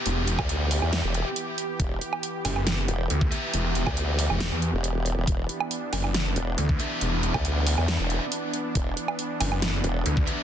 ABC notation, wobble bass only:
X:1
M:4/4
L:1/16
Q:1/4=138
K:Em
V:1 name="Wobble bass" clef=bass
z3 D,,4 E,,2 E,,,2 z4 z | E,,,2 z8 E,,,2 z4 | z3 D,,4 z4 E,,,4 E,,, | E,,,2 z8 E,,,2 z4 |
z3 D,,4 E,,2 E,,,2 z4 z | E,,,2 z8 E,,,2 z4 |]